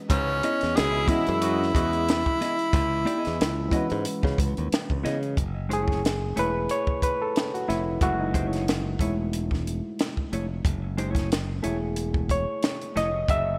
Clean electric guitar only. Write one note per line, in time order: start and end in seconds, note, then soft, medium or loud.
0.44 0.74 B3 medium
0.44 0.74 E4 medium
0.44 0.74 G#4 medium
0.44 0.74 D#5 medium
1.08 1.21 B3 medium
1.08 1.22 E4 medium
1.08 1.22 G#4 medium
1.08 1.22 D#5 medium
2.41 2.54 B3 medium
2.41 2.54 E4 medium
2.41 2.54 G#4 medium
2.41 2.54 D#5 medium
3.05 3.18 A#3 medium
3.05 3.19 D#4 medium
3.05 3.19 G4 loud
3.05 3.19 D5 loud
3.18 3.36 B3 medium
3.18 3.37 E4 medium
3.18 3.37 G#4 loud
3.18 3.37 D#5 loud
3.71 3.85 B3 medium
3.71 3.85 E4 medium
3.71 3.85 G#4 medium
3.71 3.85 D#5 medium
5.03 5.17 B3 medium
5.03 5.17 E4 medium
5.03 5.17 G#4 medium
5.03 5.17 D#5 medium
5.69 5.82 G#3 medium
5.69 5.83 D#4 medium
5.69 5.83 G4 medium
5.69 5.83 C5 medium
5.82 6.00 A3 medium
5.82 6.01 E4 medium
5.82 6.01 G#4 medium
5.82 6.01 C#5 medium
6.36 6.49 A3 medium
6.36 6.49 E4 medium
6.36 6.49 G#4 medium
6.36 6.49 C#5 medium
7.68 7.81 A3 medium
7.68 7.81 E4 medium
7.68 7.81 G#4 medium
7.68 7.82 C#5 medium
8.34 8.47 G#3 medium
8.34 8.47 D#4 medium
8.34 8.47 G4 medium
8.34 8.48 C5 medium
8.47 8.64 A3 medium
8.47 8.64 E4 medium
8.47 8.65 G#4 medium
8.47 8.65 C#5 medium
9.00 9.13 A3 medium
9.00 9.13 E4 medium
9.00 9.13 G#4 medium
9.00 9.13 C#5 medium
10.33 10.45 A3 medium
10.33 10.45 E4 medium
10.33 10.45 G#4 medium
10.33 10.46 C#5 medium
10.98 11.11 G#3 medium
10.98 11.11 D#4 medium
10.98 11.12 G4 medium
10.98 11.12 C5 medium
11.11 11.28 A3 medium
11.11 11.29 E4 medium
11.11 11.29 G#4 medium
11.11 11.29 C#5 medium
11.63 11.76 A3 medium
11.63 11.76 E4 medium
11.63 11.77 G#4 medium
11.63 11.77 C#5 medium
12.96 13.08 A3 medium
12.96 13.08 E4 medium
12.96 13.09 G#4 medium
12.96 13.09 C#5 medium